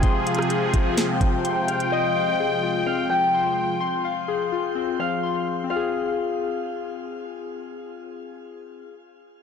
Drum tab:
HH |x-----x-x-x-x-----x-----x-----x-----x-----x--x--|------------------------------------------------|------------------------------------------------|------------------------------------------------|
SD |---------r--------------o-----------------------|------------------------------------------------|------------------------------------------------|------------------------------------------------|
BD |o-----------------o-----------o-----------------|------------------------------------------------|------------------------------------------------|------------------------------------------------|

HH |------------------------------------------------|
SD |------------------------------------------------|
BD |------------------------------------------------|